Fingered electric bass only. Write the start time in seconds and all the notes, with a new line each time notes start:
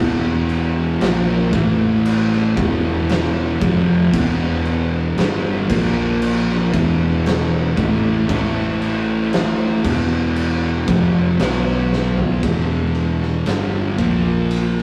Already playing: E1
1.00 A#1
1.53 A1
2.57 E1
3.62 F1
4.14 E1
5.17 G1
5.70 A#1
6.74 E1
7.77 A1
8.29 A1
9.84 E1
10.88 F1
11.40 B1
12.43 E1
13.47 G1
13.99 A#1